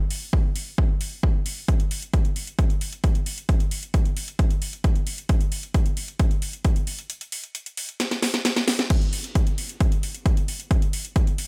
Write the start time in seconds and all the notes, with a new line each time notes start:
0.10 open hi-hat
0.33 kick
0.56 open hi-hat
0.78 kick
1.01 open hi-hat
1.23 kick
1.46 open hi-hat
1.68 kick, closed hi-hat
1.80 closed hi-hat
1.91 open hi-hat
2.02 closed hi-hat
2.13 kick, closed hi-hat
2.25 closed hi-hat
2.36 open hi-hat
2.47 closed hi-hat
2.59 kick, closed hi-hat
2.70 closed hi-hat
2.81 open hi-hat
2.93 closed hi-hat
3.04 kick, closed hi-hat
3.15 closed hi-hat
3.26 open hi-hat
3.38 closed hi-hat
3.49 kick, closed hi-hat
3.60 closed hi-hat
3.71 open hi-hat
3.83 closed hi-hat
3.94 kick, closed hi-hat
4.05 closed hi-hat
4.17 open hi-hat
4.28 closed hi-hat
4.39 kick, closed hi-hat
4.51 closed hi-hat
4.62 open hi-hat
4.73 closed hi-hat
4.84 kick, closed hi-hat
4.96 closed hi-hat
5.07 open hi-hat
5.18 closed hi-hat
5.29 kick, closed hi-hat
5.41 closed hi-hat
5.52 open hi-hat
5.63 closed hi-hat
5.74 kick, closed hi-hat
5.86 closed hi-hat
5.97 open hi-hat
6.08 closed hi-hat
6.19 kick, closed hi-hat
6.31 closed hi-hat
6.42 open hi-hat
6.53 closed hi-hat
6.65 kick, closed hi-hat
6.76 closed hi-hat
6.87 open hi-hat
6.99 closed hi-hat
7.10 closed hi-hat
7.21 closed hi-hat
7.32 open hi-hat
7.44 closed hi-hat
7.55 closed hi-hat
7.66 closed hi-hat
7.77 open hi-hat
7.89 closed hi-hat
8.00 snare, closed hi-hat
8.11 snare, closed hi-hat
8.22 snare, open hi-hat
8.34 snare, closed hi-hat
8.45 snare, closed hi-hat
8.56 snare, closed hi-hat
8.68 snare, open hi-hat
8.79 snare, closed hi-hat
8.90 kick, closed hi-hat, crash
9.02 closed hi-hat
9.13 open hi-hat
9.24 closed hi-hat
9.35 kick, closed hi-hat
9.47 closed hi-hat
9.58 open hi-hat
9.69 closed hi-hat
9.80 kick, closed hi-hat
9.92 closed hi-hat
10.03 open hi-hat
10.15 closed hi-hat
10.26 kick, closed hi-hat
10.37 closed hi-hat
10.48 open hi-hat
10.60 closed hi-hat
10.71 kick, closed hi-hat
10.82 closed hi-hat
10.93 open hi-hat
11.05 closed hi-hat
11.16 kick, closed hi-hat
11.27 closed hi-hat
11.38 open hi-hat